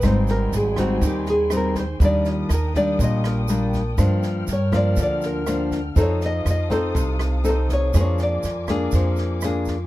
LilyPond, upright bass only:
\new Staff \with { instrumentName = "Upright bass" } { \clef bass \time 4/4 \key ees \major \tempo 4 = 121 aes,,4 aes,,4 ees,2 | ees,4 ees,4 bes,,2 | g,4 g,4 d,2 | f,4 f,4 c,2 |
f,4 f,4 f,2 | }